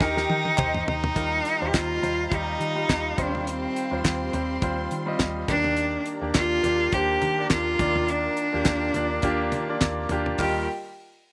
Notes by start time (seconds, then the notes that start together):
Already playing: A#4 A#5
0.00 D#2 D#3 D#4 G4 A#4 D#5 G5, kick, snare
0.16 D#4 G4 A#4, snare
0.29 D#3, high tom
0.45 high tom
0.57 D#2 D#4 G4 C5, kick, clap, mid tom
0.74 mid tom
0.87 D#2 D#4, floor tom
1.04 floor tom
1.15 D#2 D#3 G3 D#4 F4 G4 A#4 D#5 F5 A#5, kick, closed hi-hat
1.45 closed hi-hat
1.60 D#2 G3 D#4 F4 C5
1.68 G4
1.74 D#2 F4, kick, snare, clap, closed hi-hat
2.02 D#2 G3 D#4 F4 C5, closed hi-hat, floor tom
2.28 D#2 G3 D#4 F4, kick, closed hi-hat
2.33 D#4 G4
2.60 D#3, closed hi-hat
2.75 G3 D#4 F4 G4
2.89 D#2, kick, snare, clap, closed hi-hat
3.17 D#2 D#3 G3 C4 D4 F4 C5 C6, kick, closed hi-hat, floor tom
3.35 floor tom
3.47 C4, closed hi-hat
3.76 closed hi-hat
3.91 D#2 G3 C4 F4 C5
4.04 D#2 C4, kick, snare, clap, closed hi-hat
4.33 D#2 G3 C4 F4 C5, closed hi-hat, floor tom
4.62 D#2 G3 C4 F4 C5, kick, closed hi-hat
4.91 D#3, closed hi-hat
5.06 G3 C4 F4 D#5
5.19 D#2, kick, snare, clap, closed hi-hat
5.48 D#2 D#3 A#3 D4 G4 A#4 D5 A#5, kick, closed hi-hat, floor tom
5.64 floor tom
5.77 closed hi-hat
6.06 closed hi-hat
6.21 D#2 A#3 D4 G4 D5
6.34 D#2 F4, kick, snare, clap, closed hi-hat
6.63 D#2 A#3 D4 G4 D5, closed hi-hat, floor tom
6.92 D#2 A#3 D4 G4 C5, kick, closed hi-hat
7.22 D#3, closed hi-hat, floor tom
7.38 A#3 D4 G4 D5
7.50 D#2 F4, kick, snare, clap, closed hi-hat
7.79 D#2 D#3 A#3 D4 F4 D5, kick, closed hi-hat, floor tom
7.96 floor tom
8.08 D4, closed hi-hat
8.37 closed hi-hat
8.53 D#2 A#3 D4 F4 G4
8.65 D#2, kick, snare, clap, closed hi-hat
8.94 D#2 A#3 D4 F4 D5, closed hi-hat, floor tom
9.22 D#2 A#3 D4 F4 G4, kick, closed hi-hat
9.52 D#3, closed hi-hat, floor tom
9.68 A#3 D4 F4 D5
9.81 D#2, kick, snare, clap, closed hi-hat
10.09 D#2 A#3 D4 F4 G4, closed hi-hat, floor tom
10.26 floor tom
10.38 D#2 G3 D#4 F4 G4 A#4 D#5 G5, kick, clap, open hi-hat